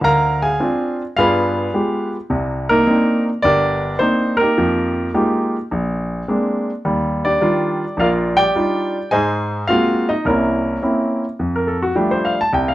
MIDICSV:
0, 0, Header, 1, 2, 480
1, 0, Start_track
1, 0, Tempo, 568182
1, 27, Time_signature, 4, 2, 24, 8
1, 10766, End_track
2, 0, Start_track
2, 0, Title_t, "Grand piano"
2, 0, Program_c, 0, 0
2, 12, Note_on_c, 0, 38, 68
2, 34, Note_on_c, 0, 70, 76
2, 35, Note_on_c, 0, 77, 79
2, 37, Note_on_c, 0, 82, 102
2, 339, Note_off_c, 0, 70, 0
2, 339, Note_off_c, 0, 77, 0
2, 341, Note_off_c, 0, 82, 0
2, 359, Note_on_c, 0, 68, 58
2, 359, Note_on_c, 0, 80, 86
2, 363, Note_on_c, 0, 77, 60
2, 438, Note_off_c, 0, 38, 0
2, 508, Note_on_c, 0, 60, 58
2, 508, Note_on_c, 0, 62, 53
2, 512, Note_on_c, 0, 65, 62
2, 805, Note_off_c, 0, 80, 0
2, 806, Note_off_c, 0, 68, 0
2, 808, Note_off_c, 0, 77, 0
2, 854, Note_off_c, 0, 60, 0
2, 854, Note_off_c, 0, 62, 0
2, 856, Note_off_c, 0, 65, 0
2, 984, Note_on_c, 0, 77, 92
2, 999, Note_on_c, 0, 43, 73
2, 1000, Note_on_c, 0, 59, 64
2, 1001, Note_on_c, 0, 65, 72
2, 1001, Note_on_c, 0, 68, 66
2, 1008, Note_on_c, 0, 71, 75
2, 1413, Note_off_c, 0, 43, 0
2, 1414, Note_off_c, 0, 59, 0
2, 1461, Note_off_c, 0, 65, 0
2, 1469, Note_on_c, 0, 56, 52
2, 1471, Note_on_c, 0, 59, 46
2, 1473, Note_on_c, 0, 67, 60
2, 1474, Note_on_c, 0, 65, 48
2, 1764, Note_off_c, 0, 77, 0
2, 1773, Note_off_c, 0, 68, 0
2, 1776, Note_off_c, 0, 71, 0
2, 1815, Note_off_c, 0, 56, 0
2, 1816, Note_off_c, 0, 59, 0
2, 1817, Note_off_c, 0, 65, 0
2, 1817, Note_off_c, 0, 67, 0
2, 1942, Note_on_c, 0, 48, 67
2, 1947, Note_on_c, 0, 36, 65
2, 2276, Note_on_c, 0, 70, 97
2, 2287, Note_on_c, 0, 58, 70
2, 2290, Note_on_c, 0, 63, 64
2, 2364, Note_off_c, 0, 48, 0
2, 2367, Note_off_c, 0, 36, 0
2, 2412, Note_off_c, 0, 58, 0
2, 2413, Note_off_c, 0, 63, 0
2, 2424, Note_on_c, 0, 58, 59
2, 2426, Note_on_c, 0, 63, 65
2, 2429, Note_on_c, 0, 60, 54
2, 2430, Note_on_c, 0, 62, 52
2, 2724, Note_off_c, 0, 70, 0
2, 2773, Note_off_c, 0, 58, 0
2, 2774, Note_off_c, 0, 63, 0
2, 2775, Note_off_c, 0, 60, 0
2, 2776, Note_off_c, 0, 62, 0
2, 2893, Note_on_c, 0, 74, 109
2, 2907, Note_on_c, 0, 31, 67
2, 2909, Note_on_c, 0, 62, 76
2, 2911, Note_on_c, 0, 67, 72
2, 2915, Note_on_c, 0, 70, 64
2, 3327, Note_off_c, 0, 31, 0
2, 3356, Note_off_c, 0, 62, 0
2, 3357, Note_off_c, 0, 67, 0
2, 3359, Note_off_c, 0, 70, 0
2, 3370, Note_on_c, 0, 72, 93
2, 3379, Note_on_c, 0, 58, 55
2, 3383, Note_on_c, 0, 60, 51
2, 3386, Note_on_c, 0, 62, 47
2, 3389, Note_on_c, 0, 63, 62
2, 3396, Note_off_c, 0, 74, 0
2, 3691, Note_on_c, 0, 70, 90
2, 3715, Note_off_c, 0, 63, 0
2, 3716, Note_off_c, 0, 58, 0
2, 3722, Note_off_c, 0, 72, 0
2, 3728, Note_on_c, 0, 63, 56
2, 3729, Note_on_c, 0, 58, 53
2, 3729, Note_on_c, 0, 67, 54
2, 3733, Note_off_c, 0, 60, 0
2, 3734, Note_off_c, 0, 62, 0
2, 3867, Note_on_c, 0, 53, 68
2, 3871, Note_on_c, 0, 41, 65
2, 4287, Note_off_c, 0, 53, 0
2, 4289, Note_off_c, 0, 41, 0
2, 4301, Note_off_c, 0, 70, 0
2, 4320, Note_off_c, 0, 58, 0
2, 4320, Note_off_c, 0, 63, 0
2, 4320, Note_off_c, 0, 67, 0
2, 4343, Note_on_c, 0, 58, 55
2, 4345, Note_on_c, 0, 56, 58
2, 4345, Note_on_c, 0, 63, 51
2, 4347, Note_on_c, 0, 65, 58
2, 4348, Note_on_c, 0, 67, 69
2, 4693, Note_off_c, 0, 58, 0
2, 4694, Note_off_c, 0, 56, 0
2, 4694, Note_off_c, 0, 63, 0
2, 4695, Note_off_c, 0, 65, 0
2, 4695, Note_off_c, 0, 67, 0
2, 4827, Note_on_c, 0, 34, 72
2, 5247, Note_off_c, 0, 34, 0
2, 5307, Note_on_c, 0, 56, 59
2, 5308, Note_on_c, 0, 60, 46
2, 5310, Note_on_c, 0, 58, 49
2, 5314, Note_on_c, 0, 62, 63
2, 5655, Note_off_c, 0, 56, 0
2, 5655, Note_off_c, 0, 60, 0
2, 5656, Note_off_c, 0, 58, 0
2, 5658, Note_off_c, 0, 62, 0
2, 5786, Note_on_c, 0, 55, 68
2, 5787, Note_on_c, 0, 39, 65
2, 6122, Note_on_c, 0, 74, 89
2, 6127, Note_on_c, 0, 62, 54
2, 6133, Note_on_c, 0, 67, 58
2, 6207, Note_off_c, 0, 39, 0
2, 6207, Note_off_c, 0, 55, 0
2, 6251, Note_off_c, 0, 62, 0
2, 6261, Note_on_c, 0, 55, 60
2, 6264, Note_on_c, 0, 51, 59
2, 6264, Note_on_c, 0, 62, 57
2, 6269, Note_on_c, 0, 65, 72
2, 6612, Note_off_c, 0, 55, 0
2, 6613, Note_off_c, 0, 51, 0
2, 6613, Note_off_c, 0, 62, 0
2, 6616, Note_off_c, 0, 65, 0
2, 6722, Note_off_c, 0, 67, 0
2, 6734, Note_on_c, 0, 34, 72
2, 6746, Note_off_c, 0, 74, 0
2, 6755, Note_on_c, 0, 77, 83
2, 6758, Note_on_c, 0, 74, 65
2, 6760, Note_on_c, 0, 65, 67
2, 6764, Note_on_c, 0, 70, 66
2, 6829, Note_off_c, 0, 77, 0
2, 7060, Note_off_c, 0, 74, 0
2, 7063, Note_off_c, 0, 65, 0
2, 7065, Note_off_c, 0, 70, 0
2, 7069, Note_on_c, 0, 79, 108
2, 7072, Note_on_c, 0, 74, 70
2, 7081, Note_on_c, 0, 67, 70
2, 7160, Note_off_c, 0, 34, 0
2, 7224, Note_on_c, 0, 55, 56
2, 7232, Note_on_c, 0, 62, 49
2, 7232, Note_on_c, 0, 65, 64
2, 7233, Note_on_c, 0, 63, 50
2, 7573, Note_off_c, 0, 55, 0
2, 7577, Note_off_c, 0, 62, 0
2, 7577, Note_off_c, 0, 63, 0
2, 7577, Note_off_c, 0, 65, 0
2, 7671, Note_off_c, 0, 74, 0
2, 7676, Note_off_c, 0, 67, 0
2, 7698, Note_on_c, 0, 80, 97
2, 7703, Note_on_c, 0, 68, 75
2, 7704, Note_on_c, 0, 75, 70
2, 7707, Note_on_c, 0, 72, 78
2, 7715, Note_on_c, 0, 44, 69
2, 7722, Note_off_c, 0, 79, 0
2, 8131, Note_off_c, 0, 44, 0
2, 8149, Note_off_c, 0, 80, 0
2, 8152, Note_off_c, 0, 68, 0
2, 8152, Note_off_c, 0, 75, 0
2, 8154, Note_off_c, 0, 72, 0
2, 8173, Note_on_c, 0, 77, 96
2, 8185, Note_on_c, 0, 65, 73
2, 8196, Note_on_c, 0, 56, 57
2, 8196, Note_on_c, 0, 60, 55
2, 8197, Note_on_c, 0, 66, 66
2, 8198, Note_on_c, 0, 58, 57
2, 8495, Note_off_c, 0, 65, 0
2, 8522, Note_off_c, 0, 77, 0
2, 8523, Note_on_c, 0, 75, 83
2, 8527, Note_on_c, 0, 63, 63
2, 8538, Note_off_c, 0, 56, 0
2, 8538, Note_off_c, 0, 60, 0
2, 8539, Note_off_c, 0, 66, 0
2, 8540, Note_off_c, 0, 58, 0
2, 8661, Note_on_c, 0, 36, 70
2, 8662, Note_off_c, 0, 63, 0
2, 8671, Note_on_c, 0, 70, 74
2, 8674, Note_off_c, 0, 75, 0
2, 8679, Note_on_c, 0, 58, 54
2, 8679, Note_on_c, 0, 61, 56
2, 8680, Note_on_c, 0, 64, 55
2, 9083, Note_off_c, 0, 36, 0
2, 9133, Note_off_c, 0, 58, 0
2, 9133, Note_off_c, 0, 61, 0
2, 9139, Note_off_c, 0, 64, 0
2, 9146, Note_on_c, 0, 58, 56
2, 9146, Note_on_c, 0, 61, 51
2, 9149, Note_on_c, 0, 60, 48
2, 9152, Note_on_c, 0, 64, 59
2, 9446, Note_off_c, 0, 70, 0
2, 9493, Note_off_c, 0, 58, 0
2, 9493, Note_off_c, 0, 61, 0
2, 9494, Note_off_c, 0, 60, 0
2, 9496, Note_off_c, 0, 64, 0
2, 9625, Note_on_c, 0, 41, 61
2, 9763, Note_on_c, 0, 70, 66
2, 9862, Note_on_c, 0, 69, 70
2, 9938, Note_off_c, 0, 70, 0
2, 9981, Note_off_c, 0, 69, 0
2, 9990, Note_on_c, 0, 66, 70
2, 10045, Note_off_c, 0, 41, 0
2, 10083, Note_off_c, 0, 66, 0
2, 10099, Note_on_c, 0, 53, 54
2, 10102, Note_on_c, 0, 67, 68
2, 10103, Note_on_c, 0, 55, 56
2, 10107, Note_on_c, 0, 57, 55
2, 10107, Note_on_c, 0, 62, 66
2, 10232, Note_on_c, 0, 72, 76
2, 10265, Note_off_c, 0, 67, 0
2, 10347, Note_on_c, 0, 77, 78
2, 10412, Note_off_c, 0, 72, 0
2, 10449, Note_off_c, 0, 53, 0
2, 10451, Note_off_c, 0, 55, 0
2, 10453, Note_off_c, 0, 57, 0
2, 10453, Note_off_c, 0, 62, 0
2, 10463, Note_off_c, 0, 77, 0
2, 10482, Note_on_c, 0, 81, 89
2, 10569, Note_off_c, 0, 81, 0
2, 10583, Note_on_c, 0, 36, 70
2, 10594, Note_on_c, 0, 79, 72
2, 10714, Note_on_c, 0, 77, 79
2, 10751, Note_off_c, 0, 79, 0
2, 10766, Note_off_c, 0, 36, 0
2, 10766, Note_off_c, 0, 77, 0
2, 10766, End_track
0, 0, End_of_file